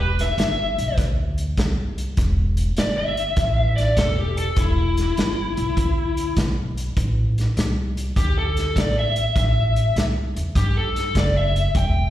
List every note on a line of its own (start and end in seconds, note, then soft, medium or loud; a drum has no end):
0.00 0.32 E1 medium
0.00 0.18 B4 medium
0.19 0.39 E5 medium
0.19 snare soft
0.19 closed hi-hat medium
0.38 0.74 G1 medium
0.38 0.97 E5 medium
0.38 snare medium
0.38 closed hi-hat medium
0.78 0.96 B1 medium
0.78 closed hi-hat medium
0.98 1.52 D2 medium
0.98 kick loud
0.98 snare soft
0.98 closed hi-hat medium
1.38 closed hi-hat medium
1.57 2.12 C2 medium
1.57 kick medium
1.57 snare loud
1.57 closed hi-hat medium
1.98 closed hi-hat medium
2.17 2.71 E1 loud
2.17 kick loud
2.17 snare soft
2.17 closed hi-hat medium
2.57 closed hi-hat medium
2.77 3.32 G1 medium
2.77 2.97 D5 medium
2.77 snare loud
2.77 closed hi-hat medium
2.98 3.75 E5 medium
3.17 closed hi-hat medium
3.37 3.91 A1 medium
3.37 kick loud
3.37 snare soft
3.37 closed hi-hat medium
3.76 3.96 D5 medium
3.76 snare soft
3.76 closed hi-hat medium
3.97 4.51 E1 medium
3.97 4.19 A4 medium
3.97 kick medium
3.97 snare loud
3.97 closed hi-hat medium
4.19 4.37 G4 medium
4.37 4.57 A4 medium
4.37 closed hi-hat medium
4.56 5.11 E1 medium
4.56 6.34 E4 medium
4.56 kick loud
4.56 closed hi-hat medium
4.97 snare soft
4.97 closed hi-hat medium
5.17 5.54 G1 medium
5.17 snare loud
5.17 closed hi-hat medium
5.57 5.75 B1 medium
5.57 closed hi-hat medium
5.77 6.31 D2 medium
5.77 kick medium
5.77 closed hi-hat medium
6.17 closed hi-hat medium
6.37 6.91 B1 medium
6.37 kick medium
6.37 snare loud
6.37 closed hi-hat medium
6.77 closed hi-hat medium
6.97 7.51 A1 medium
6.97 kick loud
6.97 closed hi-hat medium
7.38 snare soft
7.38 closed hi-hat medium
7.57 8.10 C2 medium
7.57 snare medium
7.57 closed hi-hat medium
7.97 closed hi-hat medium
8.16 8.70 D2 medium
8.16 8.36 G4 medium
8.16 kick loud
8.16 snare soft
8.16 closed hi-hat medium
8.38 8.76 A4 medium
8.57 snare soft
8.57 closed hi-hat medium
8.76 9.30 A1 medium
8.76 8.97 D5 medium
8.76 kick medium
8.76 snare loud
8.76 closed hi-hat medium
8.99 9.36 E5 medium
9.16 closed hi-hat medium
9.36 9.90 A1 loud
9.36 9.95 E5 loud
9.36 kick loud
9.36 snare soft
9.36 closed hi-hat medium
9.76 closed hi-hat medium
9.96 10.32 C2 medium
9.96 snare medium
9.96 closed hi-hat medium
10.36 10.54 E2 medium
10.36 closed hi-hat medium
10.55 11.09 G2 medium
10.55 10.76 G4 medium
10.55 kick medium
10.55 snare soft
10.55 closed hi-hat medium
10.76 11.15 A4 medium
10.96 snare soft
10.96 closed hi-hat medium
11.15 11.69 F#1 medium
11.15 11.36 D5 medium
11.15 kick medium
11.15 snare loud
11.15 closed hi-hat medium
11.37 11.75 E5 medium
11.56 closed hi-hat medium
11.75 12.10 E1 medium
11.75 12.10 G5 loud
11.75 kick loud
11.75 closed hi-hat medium